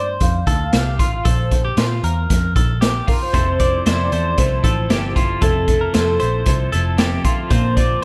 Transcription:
Already playing: picked electric bass G2, clean electric guitar C5
0.20 picked electric bass F2, soft synth lead F5, kick, closed hi-hat
0.47 picked electric bass D2, clean electric guitar A4, kick, closed hi-hat
0.73 picked electric bass C2, clean electric guitar G4, snare, closed hi-hat
0.99 picked electric bass A1, clean electric guitar F4, kick, closed hi-hat
1.25 picked electric bass A#1, clean electric guitar A4, soft synth lead C5, kick, closed hi-hat
1.51 kick, closed hi-hat
1.65 clean electric guitar G4
1.77 picked electric bass A#2, clean electric guitar F4, snare, closed hi-hat
2.04 picked electric bass E2, clean electric guitar A#4, closed hi-hat
2.30 picked electric bass F2, kick, snare, closed hi-hat
2.56 picked electric bass A#1, clean electric guitar A4, kick, closed hi-hat
2.81 clean electric guitar G4, snare, closed hi-hat
3.07 clean electric guitar F4, soft synth lead A#4, kick, open hi-hat
3.22 soft synth lead C5
3.34 picked electric bass F1, clean electric guitar F2 C3 F3 C4 E4 A4 C5, kick, closed hi-hat
3.59 clean electric guitar F3 C4 E4 A4 D5, kick, closed hi-hat
3.86 clean electric guitar F2 C3 F3 C4 E4 A4 C5, picked electric bass F2, soft synth lead D5, snare, closed hi-hat
4.12 picked electric bass E2, clean electric guitar F3 C4 E4 A4 C5, closed hi-hat
4.37 picked electric bass C2, clean electric guitar F3 C4 E4 A4, soft synth lead C5, kick, snare, closed hi-hat
4.64 picked electric bass A1, clean electric guitar F3 C4 E4 A4, kick, closed hi-hat
4.90 picked electric bass G1, clean electric guitar F2 C3 F3 C4 E4 G4 A4, snare, closed hi-hat
5.15 picked electric bass G1, clean electric guitar F3 C4 E4 F4 A4, kick, closed hi-hat
5.41 picked electric bass F1, clean electric guitar F2 C3 F3 C4 E4 A4, soft synth lead A4, kick, closed hi-hat
5.68 clean electric guitar F3 C4 E4 A4, kick, closed hi-hat
5.81 clean electric guitar A#4
5.93 clean electric guitar F2 C3 F3 C4 E4 A4 C5, picked electric bass F2, soft synth lead A4, snare, closed hi-hat
6.20 picked electric bass A#1, clean electric guitar F3 C4 E4 A4 C5, closed hi-hat
6.46 picked electric bass C2, clean electric guitar F3 C4 E4 A4, kick, closed hi-hat
6.72 picked electric bass F1, clean electric guitar F3 C4 E4 A4, closed hi-hat
6.98 clean electric guitar F2 C3 F3 C4 E4 G4 A4, snare, closed hi-hat
7.25 clean electric guitar F3 C4 E4 F4 A4, kick, closed hi-hat
7.50 picked electric bass A#1, clean electric guitar A#2 D3 F3 A#3 C4 F4 C5, soft synth lead C5, kick, closed hi-hat
7.77 clean electric guitar F3 A#3 C4 F4 D5, kick, closed hi-hat

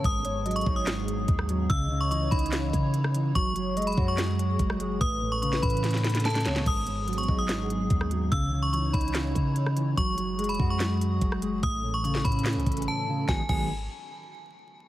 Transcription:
0.04 808-style bass G#1, clean electric guitar G#2, analog synth pad F#3 B3 G#4, synth bell D#6, kick, closed hi-hat
0.25 clean electric guitar G#2, soft synth lead C#5, closed hi-hat
0.45 clean electric guitar F#3, soft synth lead D#5, closed hi-hat
0.51 closed hi-hat
0.56 synth bell C#6, closed hi-hat
0.61 closed hi-hat
0.66 808-style bass G#1, clean electric guitar D#4, soft synth lead C#5, kick
0.76 synth bell D#6
0.86 clean electric guitar G#2, snare, clap, closed hi-hat
1.08 closed hi-hat
1.28 808-style bass D#2, kick, closed hi-hat
1.39 cross-stick
1.49 clean electric guitar F#3, closed hi-hat
1.70 808-style bass C#2, clean electric guitar C#3, analog synth pad E3 D#4 C#5, soft synth lead D#5, synth bell E6, kick, closed hi-hat
1.91 clean electric guitar C#3
2.01 synth bell C#6
2.11 clean electric guitar E3, synth bell C#6, closed hi-hat
2.31 808-style bass C#2, clean electric guitar D#4, synth bell B5, kick, closed hi-hat
2.39 closed hi-hat
2.46 closed hi-hat
2.52 clean electric guitar C#3, snare, clap, closed hi-hat
2.73 808-style bass C#3, kick, closed hi-hat
2.94 closed hi-hat
3.04 cross-stick
3.15 clean electric guitar E3, closed hi-hat
3.35 808-style bass F#1, analog synth pad F#3 G#3 G#4, clean electric guitar F#3, synth bell C#6, kick, closed hi-hat
3.56 clean electric guitar F#3, soft synth lead C#5, closed hi-hat
3.77 clean electric guitar G#3, soft synth lead D#5, closed hi-hat
3.82 closed hi-hat
3.87 synth bell B5, closed hi-hat
3.92 closed hi-hat
3.97 808-style bass F#2, clean electric guitar F#4, soft synth lead C#5, kick
4.08 synth bell C#6
4.17 clean electric guitar F#3, snare, clap, closed hi-hat
4.39 closed hi-hat
4.59 808-style bass F#1, kick, closed hi-hat
4.70 cross-stick
4.80 clean electric guitar G#3, closed hi-hat
5.01 808-style bass A1, clean electric guitar A2, analog synth pad E3 C#4 A4, soft synth lead B4, synth bell D#6, kick, closed hi-hat
5.22 clean electric guitar A2
5.32 synth bell C#6
5.42 clean electric guitar C#3, synth bell C#6, closed hi-hat
5.53 snare
5.62 808-style bass A2, clean electric guitar C#4, synth bell B5, kick, closed hi-hat
5.70 closed hi-hat
5.77 closed hi-hat
5.84 clean electric guitar A2, snare, closed hi-hat
5.91 snare, closed hi-hat
5.97 closed hi-hat
6.04 snare, closed hi-hat
6.10 closed hi-hat
6.15 snare, closed hi-hat
6.20 closed hi-hat
6.25 soft synth lead A4, synth bell A5, snare, closed hi-hat
6.30 closed hi-hat
6.35 snare, closed hi-hat
6.40 closed hi-hat
6.45 808-style bass C#2, clean electric guitar C#3, soft synth lead C#5, snare, closed hi-hat
6.56 snare
6.66 808-style bass G#1, clean electric guitar G#2, analog synth pad F#3 B3 G#4, synth bell D#6, kick, closed hi-hat, crash
6.87 clean electric guitar G#2, closed hi-hat
7.08 clean electric guitar F#3, closed hi-hat
7.13 closed hi-hat
7.18 synth bell C#6, closed hi-hat
7.23 closed hi-hat
7.28 808-style bass G#1, clean electric guitar D#4, kick
7.39 synth bell D#6
7.48 clean electric guitar G#2, snare, clap, closed hi-hat
7.70 closed hi-hat
7.90 808-style bass D#2, kick, closed hi-hat
8.01 cross-stick
8.11 clean electric guitar F#3, closed hi-hat
8.32 808-style bass C#2, clean electric guitar C#3, analog synth pad E3 D#4 C#5, synth bell E6, kick, closed hi-hat
8.53 clean electric guitar C#3
8.63 synth bell C#6
8.73 clean electric guitar E3, synth bell C#6, closed hi-hat
8.93 808-style bass C#2, clean electric guitar D#4, synth bell B5, kick, closed hi-hat
9.01 closed hi-hat
9.08 closed hi-hat
9.14 clean electric guitar C#3, snare, clap, closed hi-hat
9.35 808-style bass C#3, kick, closed hi-hat
9.56 closed hi-hat
9.66 cross-stick
9.77 clean electric guitar E3, closed hi-hat
9.97 808-style bass F#1, clean electric guitar F#3, analog synth pad F#3 G#3 G#4, synth bell C#6, kick, closed hi-hat
10.18 clean electric guitar F#3, closed hi-hat
10.39 clean electric guitar G#3, closed hi-hat
10.44 closed hi-hat
10.49 synth bell B5, closed hi-hat
10.54 closed hi-hat
10.59 808-style bass F#2, clean electric guitar F#4, kick
10.70 synth bell C#6
10.79 clean electric guitar F#3, snare, clap, closed hi-hat
11.01 closed hi-hat
11.21 808-style bass F#1, kick, closed hi-hat
11.32 cross-stick
11.42 clean electric guitar G#3, closed hi-hat
11.63 808-style bass A1, clean electric guitar A2, analog synth pad E3 C#4 A4, synth bell D#6, kick, closed hi-hat
11.84 clean electric guitar A2
11.94 synth bell C#6
12.04 clean electric guitar C#3, synth bell C#6, closed hi-hat
12.15 snare
12.25 808-style bass A2, clean electric guitar C#4, synth bell B5, kick, closed hi-hat
12.32 closed hi-hat
12.39 closed hi-hat
12.45 clean electric guitar A2, snare, clap, closed hi-hat
12.53 808-style bass C#2, closed hi-hat
12.60 closed hi-hat
12.66 808-style bass A1, kick, closed hi-hat
12.72 closed hi-hat
12.77 closed hi-hat
12.82 closed hi-hat
12.88 synth bell A5
13.08 clean electric guitar C#3
13.28 808-style bass G#1, clean electric guitar D#3 F#3 G#3 B3, synth bell G#5, kick, snare
13.49 808-style bass G#1, clean electric guitar D#3 F#3 G#3 B3, synth bell G#5, kick, crash

